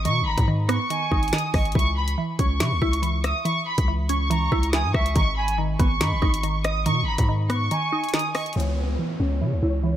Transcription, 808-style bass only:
0.05 0.23 B2 loud
0.21 0.37 G#1 loud
0.38 0.79 G#2 loud
1.12 1.32 G#1 loud
1.54 1.74 G#1 loud
1.75 2.16 C#2 loud
2.39 2.62 C#2 loud
2.60 2.73 C#3 loud
2.72 2.81 C#2 loud
2.82 3.33 C#2 loud
3.78 4.49 C#2 loud
4.52 4.86 C#2 loud
4.84 4.94 G#2 loud
4.94 5.15 C#2 loud
5.16 5.77 G#1 loud
5.80 6.02 G#1 loud
6.01 6.13 G#2 loud
6.12 6.22 G#1 loud
6.22 6.87 G#1 loud
6.86 7.04 B2 loud
7.02 7.18 G#1 loud
7.19 7.69 G#2 loud
8.56 8.97 C#2 loud
9.20 9.43 C#2 loud
9.41 9.54 C#3 medium
9.53 9.62 C#2 loud
9.63 9.97 C#2 loud

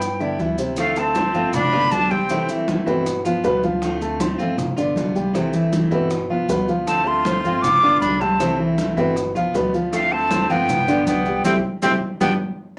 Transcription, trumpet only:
0.80 0.99 A3 medium
0.98 1.54 C4 medium
1.55 1.92 D4 loud
1.92 2.13 D4 medium
2.11 2.49 C4 medium
6.88 7.07 C4 medium
7.06 7.62 F4 medium
7.62 8.01 F4 loud
8.01 8.22 D4 medium
8.21 8.59 C4 medium
9.92 10.14 A3 medium
10.13 10.53 C4 medium
10.51 11.06 B3 medium
11.07 11.42 B3 medium
11.45 11.54 C4 medium
11.82 11.92 C4 loud
12.21 12.30 B3 medium

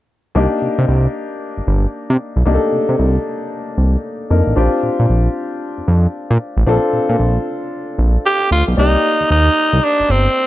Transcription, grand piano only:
0.35 2.42 A#3 medium
0.35 2.42 D4 medium
0.35 2.43 D#4 medium
0.35 2.43 G4 medium
2.45 4.26 A#3 medium
2.45 4.27 D4 medium
2.45 4.27 D#4 medium
2.45 2.55 G4 medium
2.54 4.31 A4 medium
4.30 4.57 A#3 medium
4.30 4.55 D4 soft
4.30 4.57 D#4 soft
4.30 4.57 A#4 medium
4.56 6.63 C4 medium
4.56 6.63 D4 medium
4.56 6.63 F4 medium
4.56 6.64 G4 medium
6.66 8.73 C4 medium
6.66 8.74 D4 medium
6.66 8.74 F4 medium
6.66 8.75 A4 medium
8.77 10.47 A#3 medium
8.77 10.47 D#4 medium
8.77 10.47 G4 medium
8.77 10.47 D5 medium

